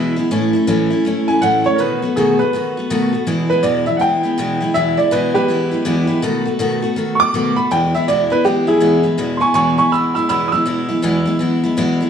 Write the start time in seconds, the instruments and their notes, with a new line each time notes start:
Already playing: steel-string acoustic guitar E2 B2 E3 G#3 B3 E4, upright piano B4 E5
0.16 steel-string acoustic guitar E3 G#3 B3 E4
0.31 steel-string acoustic guitar A2 E3 A3 C#4 E4
0.53 steel-string acoustic guitar A3 C#4 E4
0.67 steel-string acoustic guitar A2 E3 A3 C#4 E4
0.90 steel-string acoustic guitar A3 C#4 E4
1.05 steel-string acoustic guitar E3 A3 C#4 E4
1.28 steel-string acoustic guitar A3 C#4 E4, upright piano G#5
1.42 steel-string acoustic guitar A2 E3 A3 C#4 E4, upright piano F#5
1.64 steel-string acoustic guitar A3 C#4 E4, upright piano C#5
1.75 steel-string acoustic guitar B2 D#3 A3, upright piano A#4
1.80 steel-string acoustic guitar B3 F#4, upright piano B4
2.02 steel-string acoustic guitar A3 B3 F#4
2.16 steel-string acoustic guitar B2 D#3 A3 B3 F#4, upright piano G#4
2.39 steel-string acoustic guitar A3 B3 F#4, upright piano B4
2.53 steel-string acoustic guitar D#3 A3 B3 F#4
2.77 steel-string acoustic guitar A3 B3 F#4
2.90 steel-string acoustic guitar B2 D#3 A3 B3 F#4
3.12 steel-string acoustic guitar A3 B3 F#4
3.27 steel-string acoustic guitar E2 B2 E3 G#3 B3 E4
3.50 steel-string acoustic guitar E3 G#3 B3 E4, upright piano B4
3.63 steel-string acoustic guitar E2 B2 E3 G#3 B3 E4, upright piano D5
3.86 steel-string acoustic guitar E3 G#3 B3 E4, upright piano E5
3.97 steel-string acoustic guitar E3 G#3, upright piano F#5
4.01 steel-string acoustic guitar B3 E4, upright piano G5
4.23 steel-string acoustic guitar E3 G#3 B3 E4
4.38 steel-string acoustic guitar E2 B2 E3 G#3 B3 E4
4.60 steel-string acoustic guitar E3 G#3 B3 E4
4.74 steel-string acoustic guitar E2 B2 E3 G#3 B3 E4, upright piano E5
4.97 steel-string acoustic guitar E3 G#3 B3 E4, upright piano D5
5.11 steel-string acoustic guitar E2 B2 E3 G#3 B3 E4, upright piano B4
5.34 steel-string acoustic guitar E3 G#3 B3 E4, upright piano G4 B4
5.48 steel-string acoustic guitar E3 G#3 B3 E4
5.71 steel-string acoustic guitar E3 G#3 B3 E4
5.85 steel-string acoustic guitar E2 B2 E3 G#3 B3 E4
6.07 steel-string acoustic guitar E3 G#3 B3 E4
6.22 steel-string acoustic guitar B2 D#3 A3 B3 F#4
6.45 steel-string acoustic guitar A3 B3 F#4
6.59 steel-string acoustic guitar B2 D#3 A3 B3 F#4
6.82 steel-string acoustic guitar A3 B3 F#4
6.96 steel-string acoustic guitar D#3 A3 B3 F#4
7.15 upright piano C#6
7.20 steel-string acoustic guitar A3 B3 F#4, upright piano D6
7.34 steel-string acoustic guitar B2 D#3 A3 B3 F#4
7.56 steel-string acoustic guitar A3 B3 F#4, upright piano B5
7.71 steel-string acoustic guitar E2 B2 E3 G#3 B3 E4, upright piano G5
7.94 steel-string acoustic guitar E3 G#3 B3 E4, upright piano E5
8.08 steel-string acoustic guitar E2 B2 E3 G#3 B3 E4, upright piano D5
8.30 steel-string acoustic guitar E3 G#3 B3 E4, upright piano B4
8.44 steel-string acoustic guitar E3 G#3 B3 E4, upright piano G4
8.67 steel-string acoustic guitar E3 G#3 B3 E4, upright piano E4 G#4
8.80 steel-string acoustic guitar E2 B2 E3 G#3 B3 E4
9.03 steel-string acoustic guitar E3 G#3 B3 E4
9.18 steel-string acoustic guitar E2 B2 E3 G#3 B3 E4
9.37 steel-string acoustic guitar B3 E4, upright piano G#5 C6
9.41 steel-string acoustic guitar E3 G#3, upright piano C#6
9.54 steel-string acoustic guitar E2 B2 E3 G#3 B3 E4, upright piano G#5 C#6
9.78 steel-string acoustic guitar E3 G#3 B3 E4, upright piano G#5 C#6
9.92 steel-string acoustic guitar E3 G#3 B3 E4, upright piano B5 E6
10.14 steel-string acoustic guitar G#3 B3 E4, upright piano B5 E6
10.18 steel-string acoustic guitar E3
10.29 steel-string acoustic guitar E2 B2 E3 G#3 B3 E4, upright piano B5 E6
10.48 upright piano D#6
10.52 steel-string acoustic guitar E3 G#3 B3 E4, upright piano E6
10.65 steel-string acoustic guitar E2 B2 E3 G#3 B3 E4
10.89 steel-string acoustic guitar E3 G#3 B3 E4
11.02 steel-string acoustic guitar E2 B2 E3 G#3 B3 E4
11.26 steel-string acoustic guitar E3 G#3 B3 E4
11.39 steel-string acoustic guitar E3 G#3 B3 E4
11.63 steel-string acoustic guitar E3 G#3 B3 E4
11.77 steel-string acoustic guitar E2 B2 E3 G#3 B3 E4
12.00 steel-string acoustic guitar E3 G#3 B3 E4